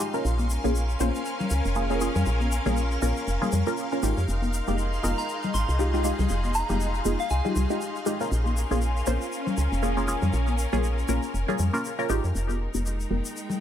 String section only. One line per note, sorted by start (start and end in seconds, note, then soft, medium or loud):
0.00 1.15 G#3 medium
0.00 0.92 D#4 medium
0.25 4.28 C#4 medium
0.37 4.28 G#5 medium
0.51 5.74 A#4 medium
4.28 9.76 D#4 medium
4.66 9.94 G#4 medium
8.31 12.35 C#4 medium
8.45 13.60 A#4 medium
8.45 12.35 G#5 medium
12.35 13.60 D#4 medium
12.65 13.60 G#3 medium
13.08 13.60 G5 medium